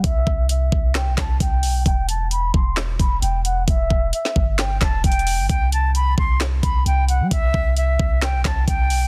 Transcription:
<<
  \new Staff \with { instrumentName = "Flute" } { \time 4/4 \key c \lydian \tempo 4 = 132 e''4 e''4 g''8 a''8 g''4 | g''8 a''8 b''8 c'''8 r8 b''8 g''8 fis''8 | e''4 e''4 g''8 a''8 g''4 | g''8 a''8 b''8 c'''8 r8 b''8 g''8 fis''8 |
e''4 e''4 g''8 a''8 g''4 | }
  \new Staff \with { instrumentName = "808-style bass" } { \clef bass \time 4/4 \key c \lydian c,8 c,4 c,8. b,,16 c,8 c,8 b,,8 | e,,4. e,,4 e,,8 e,,4 | e,,8 e,,8 r8 g,,4 e,,8 e,,8. g,,16 | c,4. c,4 c,8 c,8. g16 |
c,8 c,4 c,8. b,,16 c,8 c,8 b,,8 | }
  \new DrumStaff \with { instrumentName = "Drums" } \drummode { \time 4/4 <hh bd>8 bd8 hh8 bd8 <hc hh sn>8 <hc hh bd sn>8 <hh bd>8 hho8 | <hh bd>8 hh8 hh8 bd8 <hc hh sn>8 <hh bd>8 hh8 hh8 | <hh bd>8 bd8 hh16 sn16 bd8 <hc hh sn>8 <hc hh bd sn>8 \tuplet 3/2 { <hh bd>16 hh16 hh16 hho16 r16 r16 } | <hh bd>8 hh8 hh8 bd8 <hc hh sn>8 <hh bd>8 hh8 hh8 |
<hh bd>8 bd8 hh8 bd8 <hc hh sn>8 <hc hh bd sn>8 <hh bd>8 hho8 | }
>>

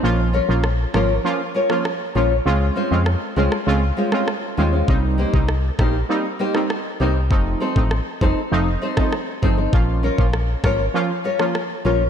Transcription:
<<
  \new Staff \with { instrumentName = "Nylon-string guitar" } { \time 4/4 \key bes \dorian \tempo 4 = 99 r8 <des' f' bes' des''>16 r8. <des' f' bes' des''>16 r8. <des' f' bes' des''>16 r8. <des' f' bes' des''>16 r16 | r8 <aes des' f' c''>16 r8. <aes des' f' c''>16 r8. <aes des' f' c''>16 <aes des' f' c''>16 r8 <aes des' f' c''>16 <aes des' f' c''>16 | r8 <bes ees' g' c''>16 r8. <bes ees' g' c''>16 r8. <bes ees' g' c''>16 r8. <bes ees' g' c''>16 r16 | r8 <c' ees' a' c''>16 r8. <c' ees' a' c''>16 r8. <c' ees' a' c''>16 <c' ees' a' c''>16 r8 <c' ees' a' c''>16 <c' ees' a' c''>16 |
r8 <des' f' bes' des''>16 r8. <des' f' bes' des''>16 r8. <des' f' bes' des''>16 r8. <des' f' bes' des''>16 r16 | }
  \new Staff \with { instrumentName = "Synth stab" } { \time 4/4 \key bes \dorian <f bes des' f'>8. <f bes des' f'>16 r8 <f bes des' f'>16 r16 <f bes des' f'>16 r8 <f bes des' f'>16 r8 <f bes des' f'>16 r16 | <aes c' des' f'>8. <aes c' des' f'>16 r8 <aes c' des' f'>16 r16 <aes c' des' f'>16 r8 <aes c' des' f'>16 r8 <aes c' des' f'>16 r16 | <g bes c' ees'>8. <g bes c' ees'>16 r8 <g bes c' ees'>16 r16 <g bes c' ees'>16 r8 <g bes c' ees'>16 r8 <g bes c' ees'>16 r16 | <f a c' ees'>8. <f a c' ees'>16 r8 <f a c' ees'>16 r16 <f a c' ees'>16 r8 <f a c' ees'>16 r8 <f a c' ees'>16 r16 |
<f bes des' f'>8. <f bes des' f'>16 r8 <f bes des' f'>16 r16 <f bes des' f'>16 r8 <f bes des' f'>16 r8 <f bes des' f'>16 r16 | }
  \new Staff \with { instrumentName = "FM bass" } { \clef bass \time 4/4 \key bes \dorian bes,,8. bes,,8. aes,,8 r4. bes,,8 | des,8 r16 f,8 r16 des,16 r16 des,8 r4 ees,8 | c,8. c,8. bes,,8 r4. c,8 | f,,8 r16 a,,8 r16 f,,16 r16 f,,8 r4 g,,8 |
bes,,8. bes,,8. aes,,8 r4. bes,,8 | }
  \new DrumStaff \with { instrumentName = "Drums" } \drummode { \time 4/4 r4 ss8 ss8 r8. ss16 ss4 | r4 ss8. ss16 r8. ss16 ss4 | bd8. bd16 ss8 <bd ss>8 r8. ss16 ss4 | bd8. bd16 ss8 bd8 r8. <bd ss>16 ss8 bd8 |
bd8. bd16 ss8 <bd ss>8 r8. ss16 ss4 | }
>>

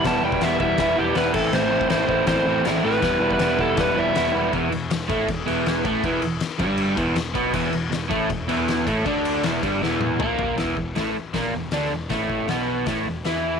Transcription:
<<
  \new Staff \with { instrumentName = "Electric slide guitar" } { \time 4/4 \key e \minor \tempo 4 = 159 a''8 g''8 e''8 e''4 g'8 b'8 a'8 | c''4 c''4 c''4 r8 b'8~ | b'8. b'8. a'8 b'8 e''4 r8 | r1 |
r1 | r1 | r1 | r1 |
r1 | }
  \new Staff \with { instrumentName = "Overdriven electric guitar" } { \clef bass \time 4/4 \key e \minor <e g b e'>8 <e g b e'>8 <e g b e'>8 <e g b e'>8 <e g b e'>8 <e g b e'>8 <e g b e'>8 <a, e a c' e'>8 | <a, e a c' e'>8 <a, e a c' e'>8 <a, e a c' e'>8 <a, e a c' e'>8 <a, e a c' e'>8 <a, e a c' e'>8 <a, e a c' e'>8 <a, e a c' e'>8 | <e g b e'>8 <e g b e'>8 <e g b e'>8 <e g b e'>8 <e g b e'>8 <e g b e'>8 <e g b e'>8 <e g b e'>8 | <e, e>8 e,8 e,8 <a, a>8 e,8 <e, e>4 <a, a>8 |
<e, e>8 e,8 r8 <g, g>4 <e, e>8 e,8 <b, b>8 | <e, e>8 e,8 e,8 <a, a>8 e,8 <e, e>4 <a, a>8 | <d d'>4 <e, e>8 <g, g>8 <e, e>4 <ais, ais>4 | <e, e>8 e,8 <a, a>8 r8 <ais, ais>8 e,8 <d d'>8 e,8 |
<a, a>4 <b, b>4 <a, a>8 e,8 <e e'>4 | }
  \new Staff \with { instrumentName = "Picked electric bass" } { \clef bass \time 4/4 \key e \minor e,,8 e,,8 e,,8 e,,8 e,,8 e,,8 e,,8 a,,8 | a,,4 a,,8 a,,8 a,,8 a,,8 a,,8 a,,8 | e,,8 e,,8 e,,8 e,,8 e,,8 e,,8 e,,8 e,,8 | e,,8 e,,8 e,,8 a,,8 e,,8 e,,4 a,,8 |
e,,8 e,,8 r8 g,,4 e,,8 e,,8 b,,8 | e,,8 e,,8 e,,8 a,,8 e,,8 e,,4 a,,8 | d,4 e,,8 g,,8 e,,4 ais,,4 | e,,8 e,,8 a,,8 r8 ais,,8 e,,8 d,8 e,,8 |
a,,4 b,,4 a,,8 e,,8 e,4 | }
  \new DrumStaff \with { instrumentName = "Drums" } \drummode { \time 4/4 <cymc bd sn>8. bd16 <cymc sn>8 bd8 <cymc bd sn>4 <cymc sn>8 <cymc bd>8 | <cymc sn>8. bd16 <cymc sn>8 bd8 <cymc bd sn>4 <cymc sn>4 | <cymc bd sn>8. bd16 <cymc sn>8 bd8 <cymc bd sn>4 <cymc sn>4 | <bd cymr>8 cymr8 <cymr sn>8 <bd cymr>8 <bd cymr>8 cymr8 <cymr sn>8 <bd cymr>8 |
<bd cymr>8 cymr8 <cymr sn>8 <bd cymr>8 cymr8 <bd cymr>8 <cymr sn>8 <bd cymr>8 | <cymc bd>8 cymr8 <cymr sn>8 <bd cymr>8 <bd cymr>8 cymr8 <cymr sn>8 <bd cymr>8 | <bd cymr>8 cymr8 <cymr sn>8 <bd cymr>8 sn8 tommh8 toml8 tomfh8 | <cymc bd sn>8 bd8 <hho sn>4 <hho bd sn>4 <hho sn>4 |
<hho bd sn>8 bd8 <hho sn>4 <hho bd sn>4 <hho sn>4 | }
>>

